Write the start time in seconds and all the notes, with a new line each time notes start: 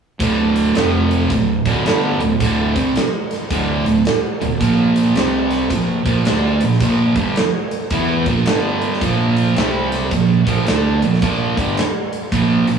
0.20 D1 D2 A2 D3, kick, closed hi-hat
0.56 closed hi-hat
0.75 F1 F2 C3 F3, snare, closed hi-hat
1.11 closed hi-hat
1.30 D1 D2 A2, kick, closed hi-hat
1.65 D1 D2 A2 D3, kick, closed hi-hat
1.85 G1 G2 D3 G3, snare, closed hi-hat
2.20 D1 D2 A2, closed hi-hat
2.40 D1 D2 A2 D3, kick, closed hi-hat
2.75 C2 C3 G3 C4, kick, closed hi-hat
2.96 snare, closed hi-hat
3.31 snare, closed hi-hat
3.50 D1 D2 A2 D3, kick, closed hi-hat
3.86 D1 D2 A2, closed hi-hat
4.05 snare, closed hi-hat
4.41 D1 D2 A2, closed hi-hat
4.61 A#1 A#2 F3 A#3, kick, closed hi-hat
4.96 closed hi-hat
5.16 C2 C3 G3 C4, snare, closed hi-hat
5.51 snare, closed hi-hat
5.70 A#1 A#2 F3, kick, closed hi-hat
6.05 A#1 A#2 F3 A#3, kick, closed hi-hat
6.25 D2 D3 A3 D4, snare, closed hi-hat
6.61 A#1 A#2 F3, closed hi-hat
6.73 snare
6.80 A#1 A#2 F3 A#3, kick, closed hi-hat
7.15 G1 G2 D3 G3, kick, closed hi-hat
7.36 snare, closed hi-hat
7.71 closed hi-hat
7.90 E2 E3 B3 E4, kick, closed hi-hat
8.26 A#1 A#2 F3 A#3, kick, closed hi-hat
8.45 G1 G2 D3 G3, snare, closed hi-hat
8.82 closed hi-hat
8.94 snare
9.01 A#1 A#2 F3 A#3, kick, closed hi-hat
9.37 closed hi-hat
9.56 C2 C3 G3 C4, snare, closed hi-hat
9.92 snare, closed hi-hat
10.11 A#1 A#2 F3, kick, closed hi-hat
10.47 A#1 A#2 F3 A#3, kick, closed hi-hat
10.67 D2 D3 A3 D4, snare, closed hi-hat
11.02 A#1 A#2 F3, closed hi-hat
11.14 snare
11.22 A#1 A#2 F3 A#3, kick, closed hi-hat
11.57 G1 G2 D3 G3, kick, closed hi-hat
11.77 snare, closed hi-hat
12.13 closed hi-hat
12.32 A#1 A#2 F3 A#3, kick, closed hi-hat
12.67 A#1 A#2 F3, closed hi-hat